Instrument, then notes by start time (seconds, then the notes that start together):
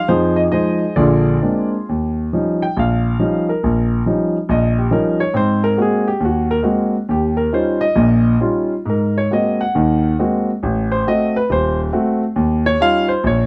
grand piano
0.08 F2 F3 D#4 G#4 C5
0.36 D#5
0.52 F3 G#3 D#4 G#4 C5 D#5
0.96 A#1 D3 F4 G#4 D5
1.42 G#3 A#3 C4 D4
1.89 D#2
2.33 F3 G3 C#4 D#4
2.62 G5
2.77 A#1 F5
3.19 F3 G3 C#4 D#4
3.49 A#4
3.64 A#1
4.06 F3 G3 C#4 D#4
4.49 A#1 D#5
4.78 G4
4.91 F3 G3 C#4 D#4 A#4
5.20 C#5
5.34 G#2 C4 C5
5.64 A#4
5.77 G#3 A#3 C4 F#4
5.82 G#4
6.08 G4
6.20 D#2
6.25 F#4
6.51 A#4
6.63 G#3 A#3 C4 F#4
7.09 D#2 G4
7.37 A#4
7.53 G3 C#4 D#4 F4 C5
7.81 D#5
7.95 A#1 A#2
8.40 G3 C#4 D#4 F4
8.86 G#2 A#4
9.18 C#5
9.31 G#3 A#3 C4 F#4 D#5
9.61 F#5
9.75 D#2 D#3
10.19 G#3 A#3 C4 F#4
10.63 A1
10.92 C5
11.07 A3 C4 F#4 D#5
11.36 B4
11.50 D#1 C5
11.92 A3 C4 F#4
12.36 D#2
12.66 C#5
12.80 G3 C#4 D#4 F4 F5
13.09 C5
13.24 A#1 C#5